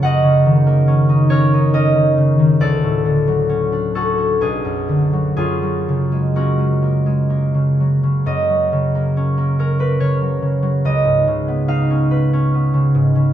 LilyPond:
<<
  \new Staff \with { instrumentName = "Harp" } { \time 3/4 \key fis \major \tempo 4 = 69 << { fis''4. cis''8 dis''4 | d''4. a'8 gis'4 | gis'4 fis'2 | dis''4. ais'16 b'16 cis''4 |
dis''4 eis''2 | } \\ { <ais' cis'' dis''>4. ais'8 ais'4 | a'4. fis'8 d'4 | eis'4 cis'2~ | cis'2.~ |
cis'2. | } >> }
  \new Staff \with { instrumentName = "Harp" } { \clef bass \time 3/4 \key fis \major <fis, fis ais cis' fis'>16 cis16 dis16 ais16 cis'16 dis'16 cis'16 dis'16 cis'16 dis16 cis16 dis16 | d,16 a,16 d16 fis16 cis'16 d'16 cis'16 d'16 b,,16 fis,16 d16 fis16 | fis,16 fis16 cis16 gis16 ais16 gis16 ais16 gis16 ais16 cis16 fis16 cis16 | fis,16 fis16 cis16 ais16 cis'16 ais16 cis'16 ais16 cis16 fis16 cis16 fis16 |
cis,16 gis,16 cis16 b16 dis'16 cis'16 b'16 cis'16 b16 cis16 gis,16 cis16 | }
>>